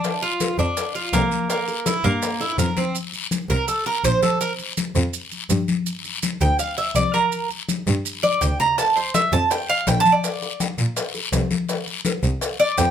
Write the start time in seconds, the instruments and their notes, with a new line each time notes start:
Already playing: cuban tres D4
0.04 high bongo, high conga, long guiro, maracas
0.22 cuban tres F4, high conga, maracas
0.40 high bongo, high conga, short guiro, maracas
0.58 double bass F2, cuban tres D4, short guiro, maracas
0.77 high bongo, high conga, long guiro, maracas
0.95 cuban tres F4, high conga, maracas
1.13 double bass C2, cuban tres A#3, high bongo, low bongo, high conga, short guiro, maracas
1.31 high conga, short guiro, maracas
1.50 cuban tres A#3, high bongo, high conga, long guiro, maracas
1.68 high bongo, high conga, maracas
1.86 cuban tres E4, high bongo, high conga, short guiro, maracas
2.04 double bass G2, cuban tres A#3, short guiro, maracas
2.22 high bongo, high conga, long guiro, maracas
2.41 cuban tres E4, high bongo, high conga, maracas
2.52 low bongo
2.58 double bass F2, cuban tres A#4, high conga, short guiro, maracas
2.65 low bongo
2.76 cuban tres C4, low bongo, high conga, short guiro, maracas
2.95 high conga, long guiro, maracas
3.13 high conga, maracas
3.31 high conga, short guiro, maracas
3.49 double bass C2, cuban tres A#4, high conga, short guiro, maracas
3.68 cuban tres A4, high conga, long guiro, maracas
3.86 cuban tres A#4, high conga, maracas
4.04 double bass A#1, cuban tres C5, high conga, short guiro, maracas
4.23 cuban tres A4, high conga, short guiro, maracas
4.41 cuban tres A#4, high conga, long guiro, maracas
4.59 high conga, maracas
4.77 high conga, short guiro, maracas
4.95 double bass F2, high conga, short guiro, maracas
5.13 high conga, long guiro, maracas
5.32 high conga, maracas
5.50 double bass G2, high conga, short guiro, maracas
5.68 high conga, short guiro, maracas
5.86 high conga, long guiro, maracas
6.05 high conga, maracas
6.22 high conga, short guiro, maracas
6.41 double bass D2, cuban tres G5, high conga, short guiro, maracas
6.59 cuban tres F5, high conga, long guiro, maracas
6.78 cuban tres E5, high conga, maracas
6.95 double bass C2, cuban tres D5, high conga, short guiro, maracas
7.14 cuban tres A#4, high conga, short guiro, maracas
7.32 high conga, long guiro, maracas
7.50 high conga, maracas
7.69 high conga, short guiro, maracas
7.87 double bass G2, high conga, short guiro, maracas
8.05 high conga, long guiro, maracas
8.23 cuban tres D5, high conga, maracas
8.41 double bass D2, cuban tres G5, low conga, short guiro, maracas
8.60 cuban tres A#5, low conga, short guiro, maracas
8.78 cuban tres A5, high bongo, high conga, long guiro, maracas
8.96 cuban tres C5, high conga, maracas
9.14 cuban tres E5, high bongo, high conga, short guiro, maracas
9.32 double bass F2, cuban tres A5, short guiro, maracas
9.50 cuban tres G5, high bongo, high conga, long guiro, maracas
9.69 cuban tres F5, high conga, maracas
9.87 double bass A#1, cuban tres G5, high bongo, low bongo, high conga, short guiro, maracas
10.00 cuban tres A5
10.05 high conga, short guiro, maracas
10.12 cuban tres D5
10.24 high bongo, high conga, long guiro, maracas
10.42 high bongo, high conga, maracas
10.60 high bongo, high conga, short guiro, maracas
10.78 double bass A#2, high conga, short guiro, maracas
10.96 high bongo, high conga, long guiro, maracas
11.14 high bongo, high conga, maracas
11.33 double bass C2, high bongo, low bongo, high conga, short guiro, maracas
11.51 high bongo, high conga, short guiro, maracas
11.69 high bongo, high conga, long guiro, maracas
11.87 high conga, maracas
12.05 high bongo, high conga, short guiro, maracas
12.23 double bass C2, high conga, short guiro, maracas
12.41 high bongo, high conga, long guiro, maracas
12.60 cuban tres D5, high conga, maracas
12.78 double bass F2, cuban tres G5, high bongo, low bongo, high conga, short guiro, maracas